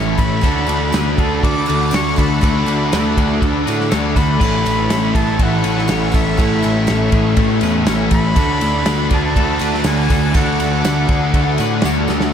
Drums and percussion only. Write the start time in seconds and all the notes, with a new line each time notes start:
0.18 kick, ride, tambourine
0.41 kick, ride, tambourine
0.66 ride, tambourine
0.92 snare, ride, tambourine
1.17 kick, ride, tambourine
1.43 kick, ride
1.66 ride, tambourine
1.91 snare, ride, tambourine
2.16 kick, ride, tambourine
2.41 kick, ride, tambourine
2.66 ride, tambourine
2.92 snare, ride, tambourine
3.17 kick, ride, tambourine
3.42 kick, ride, tambourine
3.67 ride, tambourine
3.81 snare
3.91 snare, ride, tambourine
4.16 kick, ride, tambourine
4.41 kick, tambourine, crash
4.66 ride, tambourine
4.90 snare, ride, tambourine
5.15 kick, snare, ride, tambourine
5.39 kick, ride
5.64 ride, tambourine
5.78 snare
5.88 snare, ride, tambourine
6.12 kick, ride, tambourine
6.37 kick, ride, tambourine
6.63 ride, tambourine
6.87 snare, ride, tambourine
7.12 kick, ride, tambourine
7.37 kick, ride
7.61 ride, tambourine
7.86 snare, ride, tambourine
8.11 kick, ride, tambourine
8.36 kick, ride, tambourine
8.61 ride, tambourine
8.86 snare, ride, tambourine
9.10 kick, snare, ride, tambourine
9.36 kick, ride
9.59 ride, tambourine
9.74 snare
9.84 snare, ride, tambourine
10.10 kick, ride, tambourine
10.34 kick, ride, tambourine
10.60 ride, tambourine
10.84 snare, ride, tambourine
11.09 kick, ride, tambourine
11.34 kick, ride, tambourine
11.58 ride, tambourine
11.82 snare, ride, tambourine
12.08 snare, tambourine
12.21 snare